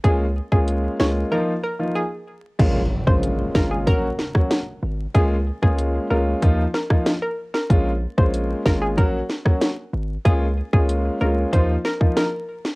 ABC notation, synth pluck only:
X:1
M:4/4
L:1/16
Q:1/4=94
K:Bbm
V:1 name="Synth pluck"
A z2 A z2 d z B z B z A3 z | z3 c z2 B A B3 z4 z | A z2 A z2 B z3 B z2 B z B | z3 c z2 B A B3 z4 z |
A z2 A z2 B z c z B z B3 z |]